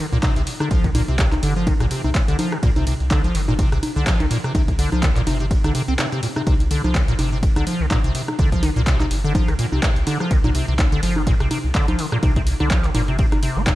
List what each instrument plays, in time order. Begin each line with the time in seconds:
0.12 analog synth bass C2, acid bass A#2
0.23 acid bass C3, kick, clap, closed hi-hat, ride, high conga
0.36 analog synth bass C2, acid bass C3, closed hi-hat
0.47 open hi-hat, ride
0.60 acid bass D3, cross-stick, closed hi-hat, high conga
0.71 analog synth bass C2, acid bass F3, kick, closed hi-hat, ride
0.84 acid bass D3, kick, closed hi-hat
0.95 acid bass A#2, open hi-hat, ride, high conga
1.08 analog synth bass C2, acid bass C3, closed hi-hat
1.19 acid bass C3, kick, clap, closed hi-hat, ride
1.32 clap, closed hi-hat, high conga
1.43 analog synth bass G1, acid bass D3, open hi-hat, ride
1.56 acid bass F3
1.67 acid bass D3, kick, closed hi-hat, ride, high conga
1.80 analog synth bass C2, acid bass A#2, cross-stick, closed hi-hat
1.91 acid bass C3, open hi-hat, ride
2.04 analog synth bass C2, acid bass C3, high conga
2.15 kick, clap, closed hi-hat, ride
2.28 analog synth bass C2, acid bass D3, closed hi-hat
2.39 acid bass F3, open hi-hat, ride, high conga
2.52 acid bass D3, cross-stick, closed hi-hat
2.63 analog synth bass C2, acid bass A#2, kick, closed hi-hat, ride
2.76 acid bass C3, closed hi-hat, high conga
2.87 acid bass C3, open hi-hat, ride
3.00 analog synth bass C2, closed hi-hat
3.11 acid bass D3, kick, clap, closed hi-hat, ride, high conga
3.24 acid bass F3, closed hi-hat
3.35 analog synth bass G1, acid bass D3, open hi-hat, ride
3.48 acid bass A#2, high conga
3.59 acid bass C3, kick, closed hi-hat, ride
3.72 analog synth bass C2, acid bass C3, cross-stick, closed hi-hat
3.83 open hi-hat, ride, high conga
3.96 analog synth bass C2, acid bass D3
4.07 acid bass F3, kick, clap, closed hi-hat, ride
4.20 analog synth bass C2, acid bass D3, closed hi-hat, high conga
4.31 acid bass A#2, open hi-hat, ride
4.44 acid bass C3, cross-stick, closed hi-hat
4.55 analog synth bass C2, acid bass C3, kick, closed hi-hat, ride, high conga
4.68 kick, closed hi-hat
4.79 acid bass D3, open hi-hat, ride
4.92 analog synth bass C2, acid bass F3, closed hi-hat, high conga
5.03 acid bass D3, kick, clap, closed hi-hat, ride
5.16 acid bass A#2, clap, closed hi-hat
5.27 analog synth bass G1, acid bass C3, open hi-hat, ride, high conga
5.40 acid bass C3, closed hi-hat
5.51 kick, closed hi-hat, ride
5.64 analog synth bass C2, acid bass D3, cross-stick, closed hi-hat, high conga
5.75 acid bass C3, open hi-hat, ride
5.88 analog synth bass C2, acid bass C4, closed hi-hat
5.99 acid bass C3, clap, closed hi-hat, ride, high conga
6.12 acid bass C3, closed hi-hat
6.23 acid bass A#2, open hi-hat, ride
6.36 acid bass C3, cross-stick, closed hi-hat, high conga
6.47 analog synth bass C2, acid bass C3, kick, closed hi-hat, ride, high conga
6.60 closed hi-hat
6.71 acid bass D3, open hi-hat, ride
6.84 analog synth bass C2, acid bass F3, closed hi-hat, high conga
6.95 acid bass D3, kick, clap, closed hi-hat, ride
7.08 acid bass A#2, closed hi-hat
7.19 analog synth bass G1, acid bass C3, open hi-hat, ride, high conga
7.32 acid bass C3
7.43 kick, closed hi-hat, ride
7.56 analog synth bass C2, acid bass D3, cross-stick, closed hi-hat, high conga
7.67 acid bass F3, open hi-hat, ride
7.80 analog synth bass C2, acid bass D3
7.91 acid bass A#2, kick, clap, closed hi-hat, ride, high conga
8.04 analog synth bass C2, acid bass C3, closed hi-hat
8.15 acid bass C3, open hi-hat, ride
8.28 cross-stick, closed hi-hat, high conga
8.39 analog synth bass C2, acid bass D3, kick, closed hi-hat, ride
8.52 acid bass F3, kick, closed hi-hat
8.63 acid bass D3, open hi-hat, ride, high conga
8.76 analog synth bass C2, acid bass A#2, closed hi-hat
8.87 acid bass C3, kick, clap, closed hi-hat, ride
9.00 acid bass C3, clap, closed hi-hat, high conga
9.11 analog synth bass G1, open hi-hat, ride
9.24 acid bass D3
9.35 acid bass F3, kick, closed hi-hat, ride, high conga
9.48 analog synth bass C2, acid bass D3, cross-stick, closed hi-hat
9.59 acid bass A#2, open hi-hat, ride
9.72 analog synth bass C2, acid bass C3, high conga
9.83 acid bass C3, kick, clap, closed hi-hat, ride
9.96 analog synth bass C2, closed hi-hat
10.07 acid bass D3, open hi-hat, ride, high conga
10.20 acid bass F3, cross-stick, closed hi-hat
10.31 analog synth bass C2, acid bass D3, kick, closed hi-hat, ride
10.44 acid bass A#2, closed hi-hat, high conga
10.55 acid bass C3, open hi-hat, ride
10.68 analog synth bass C2, acid bass C3, closed hi-hat
10.79 kick, clap, closed hi-hat, ride, high conga
10.92 acid bass D3, closed hi-hat
11.03 analog synth bass G1, acid bass F3, open hi-hat, ride
11.16 acid bass D3, high conga
11.27 acid bass A#2, kick, closed hi-hat, ride
11.40 analog synth bass C2, acid bass C3, cross-stick, closed hi-hat
11.51 acid bass C3, open hi-hat, ride, high conga
11.64 analog synth bass C2
11.75 acid bass D3, kick, clap, closed hi-hat, ride
11.88 analog synth bass C2, acid bass F3, closed hi-hat, high conga
11.99 acid bass D3, open hi-hat, ride
12.12 acid bass A#2, cross-stick, closed hi-hat
12.23 analog synth bass C2, acid bass C3, kick, closed hi-hat, ride, high conga
12.36 acid bass C3, kick, closed hi-hat
12.47 open hi-hat, ride
12.60 analog synth bass C2, acid bass D3, closed hi-hat, high conga
12.71 acid bass F3, kick, clap, closed hi-hat, ride
12.84 acid bass D3, clap, closed hi-hat
12.95 analog synth bass G1, acid bass A#2, open hi-hat, ride, high conga
13.08 acid bass C3, closed hi-hat
13.19 acid bass C3, kick, closed hi-hat, ride
13.32 analog synth bass G1, cross-stick, closed hi-hat, high conga
13.43 acid bass C3, open hi-hat, ride
13.56 analog synth bass G1, acid bass C4
13.67 acid bass C3, kick, clap, closed hi-hat, ride, high conga